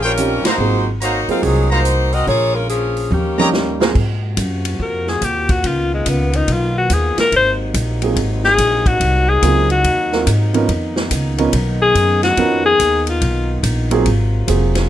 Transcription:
Already playing: A#1
0.03 G3 C#4 F4 A#4 C5 C#5 G5
0.17 F3 C4 C#4 D#4 G4, closed hi-hat
0.44 A#3 D#4 F#4 C5 F5 A#5, muted upright bass stroke, snare, ride
0.58 G#1 F#3 A#3 C4 F4 G#4
1.01 A#3 D#4 F#4 C5 C#5 F5 A#5, closed hi-hat
1.28 F#3 A#3 C4 D#4 F4 G#4, muted upright bass stroke, open hi-hat
1.43 C2 F#3 C4 D#4 G#4, kick, open hi-hat
1.70 A#3 D#4 F#4 C5 F5 A#5
1.85 closed hi-hat
2.12 C4 F#4 A#4 D#5, open hi-hat
2.27 A#1 A#3 F4 G#4 C#5, kick, open hi-hat
2.55 G#3 C#4 F4 A#4
2.69 F3 A#3 C#4 G#4, closed hi-hat
2.97 open hi-hat
3.11 D#2 D#3 A#3 C#4 G4, high tom
3.38 G3 A#3 C#4 D#4 G4 A#4 C#5 D#5 A#5, high tom
3.53 snare
3.80 F#3 G#3 A#3 C4 F4 F#4 G#4 C5 F5 A#5, snare
3.95 G#2 C3 A#3 F4 F#4, kick, crash
4.37 F#2, kick, hi-hat pedal, ride
4.65 ride
4.79 F2 A#4, kick
5.07 G#4, snare
5.21 D#2 G4, kick, hi-hat pedal, ride
5.49 F#4, kick, ride
5.64 C#2 D#3 B3 F4, kick, ride
5.94 G#3
6.06 C#2 B3, kick, hi-hat pedal, ride
6.33 D#4, ride
6.48 B1, kick, ride
6.53 F4
6.78 F#4
6.90 D#2 G#4, kick, hi-hat pedal, ride
7.17 A#4, muted upright bass stroke, snare, ride
7.32 G#1 C3 F#3 A#3 D#4, kick, ride
7.36 C5
7.74 A#1, kick, hi-hat pedal, ride
8.02 F#3 A#3 C4 F4 G#4, ride
8.16 G#1, kick, ride
8.44 G#4, snare
8.58 A#1, kick, hi-hat pedal, ride
8.86 F#4, kick, ride
9.00 C2, kick, ride
9.29 G#4
9.42 C#2 F#3 A#3 C4 F4 G#4, kick, hi-hat pedal, ride
9.70 F#4, ride
9.84 D#2, kick, ride
10.12 F#3 A#3 C4 F4 A#4, snare
10.27 G#2, kick, hi-hat pedal, ride
10.54 F3 B3 C#4 D#4 A#4, ride
10.68 F2 D#3 B3, kick, ride
10.96 snare
11.11 C#2, kick, hi-hat pedal, ride
11.38 F3 B3 C#4 D#4 A#4, ride
11.53 B1, kick, ride
11.82 G#4
11.95 F#2, kick, hi-hat pedal, ride
12.23 F#4, snare, ride
12.37 F2 F3 B3 C#4 D#4 A#4, kick, ride
12.66 G#4
12.79 D#2, kick, hi-hat pedal, ride
13.07 F4, ride
13.21 B1, kick, ride
13.63 A#1, kick, hi-hat pedal, ride
13.91 F#3 A#3 C4 F4 G#4, ride
14.05 G#1 C3 F#3 F4, kick, ride
14.47 F1 F#3 A#3 C4 F4 G#4, kick, hi-hat pedal, ride
14.75 snare, ride

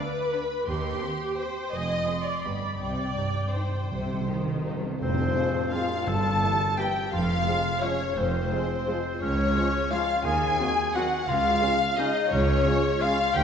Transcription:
Already playing: B4 D6
0.33 B3 D4 B5
0.67 D#2 G4 C6
1.01 C4 G4
1.37 C4 G4 C5 G5
1.72 F1 F2 D#5 G#5
2.07 C4 G#4 C6
2.26 D5
2.44 G1 G2 B3 G4 B5
2.79 C2 C3 D5 G5
2.88 C3
2.95 C3
3.11 C3
3.16 G2 C3 D#4 G4
3.28 C3
3.36 C3
3.44 C3
3.52 C3 D#4 G4 C5
3.60 C3
3.68 C3
3.76 C3
3.83 C3
3.91 C2 C3
3.98 C3
4.06 C3
4.13 C3
4.21 C3
4.27 C3 D#3 D#4 G4
4.38 C3
4.45 C3
4.54 C3
4.61 C3 D#4 G4
4.69 C3
4.77 C3
4.84 C3
4.92 C3
5.00 F1 F2 C4 C5, tam-tam
5.36 F3 G#3 C4 F4 G#4
5.72 F3 G#3 C4 F4 G#4 F5
6.06 G1 G2 A4 A5
6.41 E3 G3 A#3 E4 G4
6.77 E3 G3 A#3 E4 G4 G5
7.12 F1 F2 F4 F5
7.45 F3 G#3 F4
7.82 F3 G#3 C#4 F4 C#5
8.16 F1 F2 C4 C5
8.51 F3 G#3 F4
8.87 F3 G#3 F4
9.21 C#2 C#4 C#5
9.55 F3 G#3 C#4 F4
9.91 F3 G#3 C#4 F4 F5
10.25 D#2 G#4 G#5
10.58 D#3 F#3 C4 F#4
10.94 D#3 F#3 C4 F#4 F#5
11.28 C#2 F4 F5
11.62 C#3 G#3 C#4 F4 G#4
11.97 C#3 G#3 C#4 D#4 F4 G#4 D#5
12.32 C#2 C#4 C#5
12.65 C#3 G#3 C#4 F4 G#4
13.01 C#3 G#3 C#4 F4 G#4 F5
13.34 D2 G4 G5

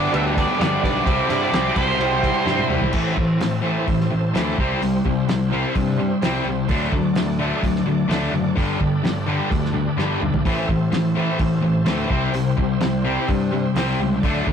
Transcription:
Already playing: G2 D3 G3 B3 D4 G4 B4 D5
0.11 D2 D4 G4 B4 E5, ride
0.35 D4 G4 B4, kick, ride
0.39 D5
0.58 G1 G2 D3 G3 B3 D4 G4 A4 D5, snare, ride
0.81 B1 G3 B3 D4 G4 B4 D5, kick
0.85 ride
1.05 C2 C3 G3 C4 E4 G4 C5, kick, ride
1.28 G2 G3 C4 E4 G4 A4 D5, ride
1.51 C2 C3 G3 C4 E4 G4 C5, snare, ride
1.75 C2 G3 C4 E4 G4 C5, kick, ride
1.98 C2 E4 G4 C5, ride
2.23 E4 G4 C5, kick, ride
2.44 G2 C3 G3 C4 E4 G4 C5, snare
2.59 high tom
2.69 C2 G3 C4 E4 G4 C5, mid tom
2.82 floor tom
2.93 A1 A2 E3 A3 C4 E4 A4 C5, kick, crash
3.16 A1 A2 E3, kick
3.39 A1 A2 E3, snare, open hi-hat
3.62 A2 E3 A3
3.86 A1 A2 E3, kick, open hi-hat
4.01 snare
4.11 A1 A2 E3
4.34 D2 A2 E3 A3, snare, open hi-hat
4.58 C2 C3 G3 C4 E4 G4 C5, kick
4.82 C2 C3 G3, open hi-hat
5.05 C2 C3 G3, kick
5.29 C2 C3 G3, snare, open hi-hat
5.53 C3 G3 C4
5.75 G2 C3 G3, kick, open hi-hat
5.99 C3 G3
6.22 C2 C3 G3 C4, snare, open hi-hat
6.44 C2 C3 G3
6.48 C3 G3
6.68 D2 D3 F#3 A3 D4 F#4 A4 D5, kick, open hi-hat
6.92 D2 D3 F#3 A3, kick
7.15 D2 D3 F#3 A3, snare, open hi-hat
7.39 D3 F#3 A3 D4
7.62 D2 D3 F#3 A3, kick, open hi-hat
7.76 snare
7.85 D2 D3 F#3 A3
8.08 D2 D3 F#3 A3 D4, snare, open hi-hat
8.32 F#1 D3 F#3 A3
8.54 G1 G2 D3 G3 D4 G4 A4 B4, kick, open hi-hat
8.79 G1 G2 D3, kick
9.03 G1 G2 D3, snare, open hi-hat
9.26 G2 D3 G3
9.50 D2 G2 D3, kick, open hi-hat
9.65 snare
9.73 G2 D3
9.97 G1 G2 D3 G3, snare
10.20 B1 G2 D3, mid tom
10.34 floor tom
10.45 A1 A2 E3 A3 C4 E4 A4 C5, kick, open hi-hat
10.67 A1 A2 E3, kick
10.91 A1 A2 E3, snare, open hi-hat
11.15 A2 E3 A3
11.39 A1 A2 E3, kick, open hi-hat
11.61 A1 A2 E3
11.85 D2 A2 E3 A3, snare, open hi-hat
12.07 C2 C3 G3 C4 E4 G4 C5, kick
12.33 C2 C3 G3, open hi-hat
12.57 C2 C3 G3, kick
12.81 C2 C3 G3, snare, open hi-hat
13.04 C3 G3 C4
13.28 G2 C3 G3, kick, open hi-hat
13.52 C3 G3
13.74 C2 C3 G3 C4, snare, open hi-hat
13.99 C#2 C3 G3
14.20 D2 D4 F#4 A4 D5, kick, open hi-hat
14.25 D3 F#3 A3 D4
14.46 D2 D3 F#3 A3, kick

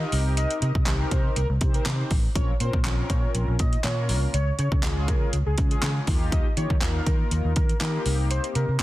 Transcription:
Already playing: D#4 F4 G4 A#4 D#5
0.12 C2 C4 D#4 G4 A#4, open hi-hat
0.37 D#5, closed hi-hat
0.51 closed hi-hat
0.62 C3 D#5, closed hi-hat
0.75 C3, kick
0.86 C2 C4 D#4 G4 A#4, snare, clap, closed hi-hat
1.11 C3 C5, kick, closed hi-hat
1.36 C2 A#4, closed hi-hat
1.50 C2
1.61 C3 C4 D#4 G4 C5, kick, closed hi-hat
1.74 A#4, closed hi-hat
1.86 C3, snare, clap, closed hi-hat
2.11 A1, kick, open hi-hat
2.35 A#1 C4 C#4 F4 A#4 C#5, kick, closed hi-hat
2.60 A#2 C4 C#4 F4 A#4 C5, closed hi-hat
2.73 A#2, kick
2.85 A#1 C4 C#4 F4 A#4, snare, clap, closed hi-hat
3.10 A#2 C#5, kick, closed hi-hat
3.35 A#1, closed hi-hat
3.48 A#1
3.59 A#2 D#5, kick, closed hi-hat
3.73 closed hi-hat
3.84 A#2 A#3 C#4 F4 A#4 C#5, snare, clap, closed hi-hat
4.09 C2, open hi-hat
4.34 C#2 C#5, closed hi-hat
4.59 C#3 C#5, closed hi-hat
4.72 C#3, kick
4.83 C#2 G#3 C#4 F4 G#4, snare, clap, closed hi-hat
5.08 C#3 A#4, kick, closed hi-hat
5.33 C#2, closed hi-hat
5.46 C#2 G#4
5.58 C#3 G#3 C#4 F4 G#4, kick, closed hi-hat
5.71 G#4, closed hi-hat
5.82 C#3, snare, clap, closed hi-hat
6.07 D#2 A#3 D#4 F4 G4, kick, open hi-hat
6.32 D#5, kick, closed hi-hat
6.57 D#3 A#3 D#4 F4 G4 C#5, closed hi-hat
6.70 D#3, kick
6.81 D#2 A#3 D#4 F4 A#4, snare, clap, closed hi-hat
7.06 D#3 A#4, kick, closed hi-hat
7.31 D#2, closed hi-hat
7.45 D#2
7.56 D#3 A#4, kick, closed hi-hat
7.69 closed hi-hat
7.81 D#3 A#3 D#4 F4 G4 A#4, snare, clap, closed hi-hat
8.05 C2 A#3 C4 D#4 G4, open hi-hat
8.31 C5, closed hi-hat
8.44 closed hi-hat
8.55 C3 A#4, closed hi-hat
8.69 C3
8.80 snare

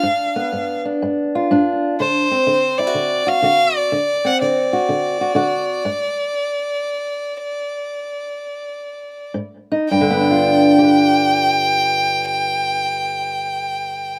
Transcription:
Already playing: D4 F5
0.03 G2
0.36 B3
0.52 G2
0.85 D4
1.02 G2
1.35 F4
1.51 G2 D4
2.00 D3 C5
2.31 C4
2.47 D3
2.78 E4 D5
2.87 F#4
2.94 D3
3.27 F#4 F5
3.42 D3 F#4
3.77 D5
3.92 D3
4.25 C4 F#5
4.41 D3 D5
4.73 F#4
4.89 D3
5.21 F#4
5.35 D3 F#4
5.85 G2
9.34 G#2
9.72 D#4
9.88 G2 G5
10.01 D3
10.10 B3
10.21 D4
10.31 F4
10.79 G4
10.84 B4

